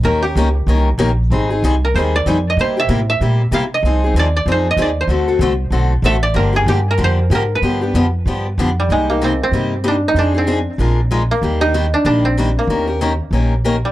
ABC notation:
X:1
M:4/4
L:1/8
Q:"Swing" 1/4=190
K:Cm
V:1 name="Koto"
B G2 z4 z | z3 B c d2 e | c =e2 e3 f _e- | e z d d c e d c- |
c2 z4 =e d | B A G B c2 B =B- | =B6 z G, | A, B, C C2 z D E |
D C2 z4 B,- | B, E2 D D C2 B,- | B,2 z4 z G, |]
V:2 name="Steel-string acoustic guitar"
[E,B,_DGB] [DGB] [E,B,DGB] z [E,B,DGB] z [E,B,DGB] z | [E,G,CEA] [CEA] [E,G,CEA] z [E,G,CEA] z [E,G,CEA] z | [C,G,B,=EG] [B,EG] [C,G,B,EG] z [C,G,B,EG] z [C,G,B,EG] z | [F,CEA] [CEA] [F,CEA] z [F,CEA] z [F,CEA] z |
[D,=A,C^F=A] [CFA] [D,A,CFA] z [D,A,CFA] z [D,A,CFA] z | [D,F,B,DG] [B,DG] [D,F,B,DG] z [D,F,B,DG] z [D,F,B,DG] z | [D,F,=B,DG] [B,DG] [D,F,B,DG] z [D,F,B,DG] z [D,F,B,DG] z | [C,G,B,EG] [B,EG] [C,G,B,EG] z [C,G,B,EG] z [C,G,B,EG] z |
[F,CEA] [CEA] [F,CEA] z [F,A,DFB] z [F,A,DFB] z | [E,G,B,DG] [B,DG] [E,G,B,DG] z [E,G,B,DG] z [E,G,B,DG] z | [E,B,_DGB] [DGB] [E,B,DGB] z [E,B,DGB] z [E,B,DGB] z |]
V:3 name="Upright bass" clef=bass
E,,2 _D,,2 C,,2 B,,,2 | A,,,2 C,,2 E,,2 F,,2 | C,2 =A,,2 B,,2 C,2 | C,,2 E,,2 F,,2 E,,2 |
D,,2 C,,2 =B,,,2 =A,,,2 | G,,,2 G,,2 F,,2 A,,2 | G,,2 F,,2 G,,2 F,,2 | C,,4 G,,4 |
F,,4 B,,,4 | E,,4 B,,,4 | E,,4 B,,,4 |]